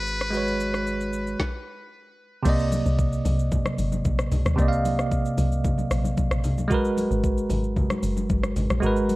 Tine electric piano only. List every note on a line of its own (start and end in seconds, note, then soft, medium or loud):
0.00 0.28 G#3 medium
0.00 0.29 F#4 medium
0.00 0.30 G#4 medium
0.00 0.31 B4 medium
0.30 1.36 G#3 medium
0.30 1.37 F#4 medium
0.35 1.38 B4 medium
0.35 1.39 C#5 medium
2.43 4.53 C3 medium
2.43 4.54 A#3 medium
2.47 4.55 D5 medium
2.47 4.56 D#5 medium
4.55 6.65 C3 medium
4.55 6.66 A#3 medium
4.59 6.67 D5 medium
4.59 4.67 D#5 medium
4.68 6.71 F5 medium
6.68 8.78 G#3 medium
6.68 8.79 F#4 medium
6.72 8.80 A#4 medium
6.72 8.81 B4 medium
8.80 9.16 G#3 medium
8.80 9.16 F#4 medium
8.84 9.16 A#4 medium
8.84 9.16 B4 medium